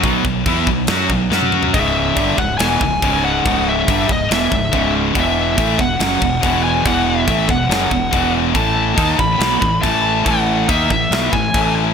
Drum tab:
CC |x---x---x-------|x---x---x---x---|x---x---x---x---|x---x---x---x---|
SD |--------o---o---|--------o-------|--------o-------|--------o-------|
T1 |-------------o--|----------------|----------------|----------------|
T2 |--------------o-|----------------|----------------|----------------|
FT |---------------o|----------------|----------------|----------------|
BD |o-o-o-o---o-----|o---o-o---o-o---|o---o-o---o-o---|o---o-o---o-o---|

CC |x---x---x---x---|x---x---x---x---|x---x---x---x---|
SD |--------o-------|--------o-------|--------o-------|
T1 |----------------|----------------|----------------|
T2 |----------------|----------------|----------------|
FT |----------------|----------------|----------------|
BD |o---o-o---o-o---|o---o-o---o-o---|o---o-o---o-o---|